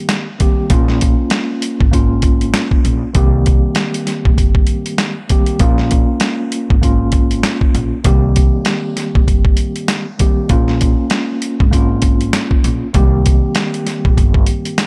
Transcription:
Already playing: tine electric piano D#3 G3 A#3 C4 G4
0.09 snare, closed hi-hat
0.39 tine electric piano D#3 G3 A#3 C4 G4, kick, closed hi-hat
0.70 upright bass A#1, tine electric piano A#3 C#4 F4, kick, closed hi-hat
0.88 snare
1.01 kick, closed hi-hat
1.30 snare, closed hi-hat
1.62 closed hi-hat
1.81 upright bass G#1, kick
1.91 tine electric piano A#3 C#4 F4, kick, closed hi-hat
2.22 kick, closed hi-hat
2.41 closed hi-hat
2.54 snare, closed hi-hat
2.71 kick
2.85 upright bass A#1, closed hi-hat
3.14 upright bass C2, tine electric piano D#3 G3 A#3 C4 G4, kick, closed hi-hat
3.46 kick, closed hi-hat
3.75 snare, closed hi-hat
3.94 closed hi-hat
4.07 snare, closed hi-hat
4.25 upright bass A#1, kick
4.38 upright bass G1, kick, closed hi-hat
4.55 kick
4.67 closed hi-hat
4.86 closed hi-hat
4.98 snare, closed hi-hat
5.29 tine electric piano D#3 G3 A#3 C4 G4, kick, closed hi-hat
5.46 closed hi-hat
5.59 upright bass A#1, tine electric piano A#3 C#4 F4, kick, closed hi-hat
5.78 snare
5.91 kick, closed hi-hat
6.20 snare, closed hi-hat
6.52 closed hi-hat
6.70 upright bass G#1, kick
6.81 tine electric piano A#3 C#4 F4, kick, closed hi-hat
7.12 kick, closed hi-hat
7.31 closed hi-hat
7.43 snare, closed hi-hat
7.61 kick
7.75 upright bass A#1, closed hi-hat
8.04 upright bass C2, tine electric piano D#3 G3 A#3 C4 G4, kick, closed hi-hat
8.36 kick, closed hi-hat
8.65 snare, closed hi-hat
8.97 snare, closed hi-hat
9.15 upright bass A#1, kick
9.28 upright bass G1, kick, closed hi-hat
9.45 kick
9.57 closed hi-hat
9.76 closed hi-hat
9.88 snare, closed hi-hat
10.19 tine electric piano D#3 G3 A#3 C4 G4, kick, closed hi-hat
10.49 upright bass A#1, tine electric piano A#3 C#4 F4, kick, closed hi-hat
10.68 snare
10.81 kick, closed hi-hat
11.10 snare, closed hi-hat
11.42 closed hi-hat
11.60 upright bass G#1, kick
11.71 tine electric piano A#3 C#4 F4, kick, closed hi-hat
12.02 kick, closed hi-hat
12.21 closed hi-hat
12.33 snare, closed hi-hat
12.51 kick
12.64 upright bass A#1, closed hi-hat
12.93 upright bass C2, tine electric piano D#3 G3 A#3 C4 G4, kick, closed hi-hat
13.26 kick, closed hi-hat
13.55 snare, closed hi-hat
13.74 closed hi-hat
13.87 snare, closed hi-hat
14.05 upright bass A#1, kick
14.17 upright bass G1, kick, closed hi-hat
14.34 kick
14.46 closed hi-hat
14.65 closed hi-hat
14.78 snare, closed hi-hat

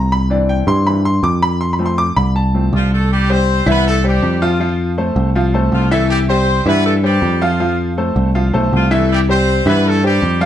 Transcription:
Already playing: picked electric bass C2, grand piano A#5
0.12 grand piano B5
0.30 grand piano E3 C4 D4 D5
0.49 grand piano G5
0.67 picked electric bass G2, grand piano C6
0.86 grand piano E3 C4 D4 B5
1.05 grand piano C6
1.23 picked electric bass F2, grand piano D6
1.43 grand piano B5
1.61 grand piano C6
1.73 grand piano B5
1.79 grand piano F3 A3 C4
1.86 grand piano C6
1.98 grand piano D6
2.16 picked electric bass C2, grand piano B5
2.36 grand piano A5
2.54 grand piano F3 A3 C4
2.73 picked electric bass C2, horn section F3 F4
2.93 horn section A3 A4
3.12 horn section G3 G4
3.29 grand piano G3 G4 C5, horn section C4 C5
3.66 picked electric bass C2, grand piano E3 E4 E5, horn section B3 B4
3.87 horn section A3 A4
4.04 grand piano G3 G4 C5, horn section G3 G4
4.22 picked electric bass F2
4.42 grand piano F3 F4 F5, horn section F3 F4
4.60 grand piano F3 F4 F5
4.98 grand piano A3 A4 C5
5.16 picked electric bass C2
5.35 grand piano F3 F4 F5
5.54 grand piano A3 A4 C5
5.72 picked electric bass C2, horn section F3 F4
5.91 grand piano E3 E4 E5, horn section A3 A4
6.09 horn section G3 G4
6.28 grand piano G3 G4 C5, horn section C4 C5
6.66 picked electric bass G2, grand piano E3 E4 E5, horn section B3 B4
6.84 horn section A3 A4
7.03 grand piano G3 G4 C5, horn section G3 G4
7.22 picked electric bass F2
7.41 grand piano F3 F4 F5, horn section F3 F4
7.60 grand piano F3 F4 F5
7.98 grand piano A3 A4 C5
8.16 picked electric bass C2
8.35 grand piano F3 F4 F5
8.53 picked electric bass B1, grand piano A3 A4 C5
8.73 picked electric bass C2, horn section F3 F4
8.91 grand piano E3 E4 E5, horn section A3 A4
9.11 horn section G3 G4
9.29 grand piano G3 G4 C5, horn section C4 C5
9.66 picked electric bass G2, grand piano E3 E4 E5, horn section B3 B4
9.86 horn section A3 A4
10.03 grand piano G3 G4 C5, horn section G3 G4
10.22 picked electric bass F2
10.41 grand piano F3 F4 F5, horn section F4

